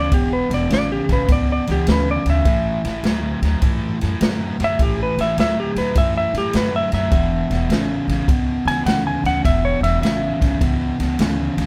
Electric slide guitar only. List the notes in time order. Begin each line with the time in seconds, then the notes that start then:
Already playing: D5
0.14 G4
0.33 B4
0.54 D5
0.74 D5
0.92 G4
1.13 B4
1.32 D5
1.52 D5
1.72 G4
1.92 B4
2.11 D5
2.30 E5
4.64 E5
4.82 G4
5.03 B4
5.21 E5
5.40 E5
5.60 G4
5.78 B4
5.98 E5
6.17 E5
6.38 G4
6.57 B4
6.76 E5
6.94 E5
8.68 G#5
8.86 F#5
9.07 G#5
9.26 F#5
9.45 E5
9.65 C#5
9.83 E5
10.03 E5